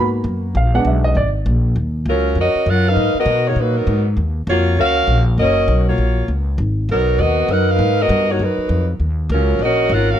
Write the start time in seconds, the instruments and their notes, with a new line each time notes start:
Already playing: upright bass G#2, grand piano A#3 B3 F#4
0.24 upright bass F#2
0.55 upright bass A#1, grand piano F5
0.74 grand piano G#3 B3 D4 F#5
0.85 upright bass B1, grand piano E5
1.04 grand piano D#5
1.15 upright bass G#1, grand piano D5
1.46 upright bass A#1
1.76 upright bass D#2
2.06 upright bass C#2, saxophone section F#3 C#4 F4 A#4
2.35 upright bass F2, saxophone section C#4 A#4
2.39 saxophone section F#4 D#5
2.55 muted upright bass stroke
2.66 upright bass F#2, saxophone section C#4 F4 A#4 F#5
2.87 saxophone section D#4 A#4 B4 F5
2.96 upright bass G#2
3.14 saxophone section B3 A#4, muted upright bass stroke
3.19 saxophone section F#4 D#5
3.26 upright bass B2
3.47 saxophone section A#3 D#4 F#4 C#5
3.56 upright bass A#2, saxophone section F#3 A#3 D#4
3.60 saxophone section B4
3.78 saxophone section F#3 B3 D#4 A#4
3.87 upright bass G#2
4.17 upright bass D#2
4.47 upright bass F2, saxophone section A#3 F4 F#4 C#5
4.77 upright bass C#2, saxophone section C#4 F#4 A#4 F5
5.07 upright bass A#1
5.38 upright bass F#1, saxophone section C#4 F#4 A#4 D#5
5.68 upright bass B1
5.87 saxophone section A#3 F4 F#4 C#5
5.98 upright bass A#1
6.28 upright bass C#2
6.58 upright bass G#1
6.89 upright bass B1, saxophone section F#3 B3 D#4 A#4
7.18 upright bass D#2, saxophone section B3 F#4 A#4 D#5
7.48 upright bass F#2, saxophone section D#4 A#4 B4 F#5
7.70 saxophone section D#4 A#4 B4 F5
7.79 upright bass G#2
8.01 saxophone section B3 F#4 A#4 D#5
8.09 upright bass G2
8.31 saxophone section A#3 D#4 F#4 C#5
8.39 upright bass F#2, saxophone section F#3 D#4 B4
8.43 saxophone section A#4
8.58 muted upright bass stroke
8.69 upright bass F2
9.00 upright bass D#2
9.29 upright bass C#2, saxophone section F#3 C#4 F4 A#4
9.59 upright bass A#1, saxophone section F#4 A#4 D#5
9.63 saxophone section C#4
9.89 upright bass G#1, saxophone section C#4 F4 A#4 F#5
10.10 saxophone section C#4 F#4 A#4 F5